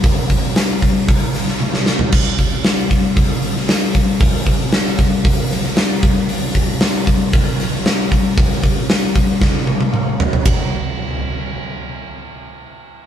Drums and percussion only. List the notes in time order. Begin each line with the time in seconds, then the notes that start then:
0.04 kick, open hi-hat
0.30 kick, open hi-hat
0.56 snare, open hi-hat
0.82 kick, open hi-hat
1.08 kick, open hi-hat
1.35 snare, open hi-hat
1.48 snare
1.60 high tom
1.74 snare
1.86 snare
1.99 floor tom
2.12 kick, crash
2.39 kick, open hi-hat
2.64 snare, open hi-hat
2.91 kick, open hi-hat
3.17 kick, open hi-hat
3.43 open hi-hat
3.56 snare
3.69 snare, open hi-hat
3.95 kick, open hi-hat
4.20 kick, open hi-hat
4.46 kick, open hi-hat
4.72 snare, open hi-hat
4.99 kick, open hi-hat
5.25 kick, open hi-hat
5.51 snare, open hi-hat
5.64 snare
5.77 snare, open hi-hat
6.03 kick, open hi-hat
6.29 open hi-hat
6.55 kick, open hi-hat
6.81 snare, open hi-hat
7.07 kick, open hi-hat
7.33 kick, open hi-hat
7.60 snare, open hi-hat
7.86 snare, open hi-hat
8.12 kick, open hi-hat
8.37 kick, open hi-hat
8.63 kick, open hi-hat
8.89 snare, open hi-hat
9.15 kick, open hi-hat
9.41 kick, snare
9.67 high tom
9.81 high tom
9.94 mid tom
10.20 floor tom
10.33 floor tom
10.46 kick, ride bell